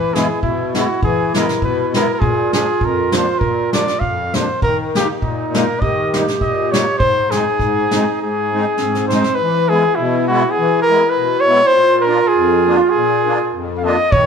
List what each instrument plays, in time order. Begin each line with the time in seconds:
Already playing: accordion E3, clarinet E4, flugelhorn B4
0.14 accordion G#3 B3 E4, flugelhorn G#4, snare
0.42 accordion B2, flugelhorn E4, kick
0.75 accordion G#3 B3 E4, flugelhorn F#4, snare
1.03 accordion E3, flugelhorn G#4, kick
1.34 accordion G#3 B3 E4, flugelhorn A#4, snare
1.49 snare
1.62 accordion B2, flugelhorn B4, kick
1.94 accordion G#3 B3 E4, flugelhorn A#4, snare
2.14 flugelhorn A#4
2.19 accordion A#2, clarinet F4, flugelhorn G#4, kick
2.53 accordion F3 A#3 D4, flugelhorn G#4, snare
2.81 accordion F2, kick
2.85 flugelhorn A#4
3.12 accordion F3 A#3 D4, flugelhorn C5, snare
3.39 accordion A#2, flugelhorn A#4, kick
3.73 accordion F3 A#3 D4, flugelhorn D5, snare
3.88 snare
4.00 accordion F2, flugelhorn F5, kick
4.34 accordion F3 A#3 D4, flugelhorn C5, snare
4.62 accordion D#3, clarinet D#4, flugelhorn A#4, kick
4.94 accordion G#3 A#3 D#4, flugelhorn G4, snare
5.22 accordion A#2, flugelhorn D#4, kick
5.53 accordion G#3 A#3 D#4, flugelhorn A#4, snare
5.81 accordion D#3, clarinet G4, flugelhorn D#5, kick
6.13 accordion G3 A#3 D#4, snare
6.28 snare
6.41 accordion A#2, flugelhorn D#5, kick, snare
6.71 accordion G3 A#3 D#4, flugelhorn C#5, snare
6.98 accordion G#2, clarinet D#4, flugelhorn C5, kick
7.31 accordion G#3 C4 D#4, flugelhorn G#4, snare
7.59 accordion G#2, kick, snare
7.91 accordion G#3 C4 D#4, snare
8.20 accordion G#2, flugelhorn G#4
8.52 accordion G#3 C4 D#4
8.78 accordion G#2, clarinet C4, snare
8.95 snare
9.08 accordion G#3 C4, flugelhorn C5, snare
9.12 accordion D#4
9.24 snare
9.35 clarinet E4, flugelhorn B4
9.40 accordion E3
9.69 accordion G#3 B3 E4, flugelhorn G#4
9.95 accordion B2, flugelhorn E4
10.28 accordion G#3 B3 E4, flugelhorn F#4
10.51 flugelhorn G#4
10.58 accordion E3
10.82 flugelhorn A#4
10.89 accordion G#3 B3 E4
11.09 flugelhorn B4
11.17 accordion B2
11.40 flugelhorn C#5
11.47 accordion G#3 B3 E4
11.67 flugelhorn C5
11.75 accordion A#2, clarinet F4
11.99 flugelhorn A#4 C5
12.07 accordion A#3 D4 F4
12.28 flugelhorn G#4
12.35 accordion F2
12.66 accordion A#3 D4 F4
12.77 flugelhorn F4
12.90 flugelhorn G#4
12.95 accordion A#2
13.25 accordion A#3 D4 F4
13.53 accordion F2
13.78 flugelhorn F5
13.83 accordion A#3 D4 F4, flugelhorn D#5
14.12 accordion D#3, clarinet D#4, flugelhorn C#5, kick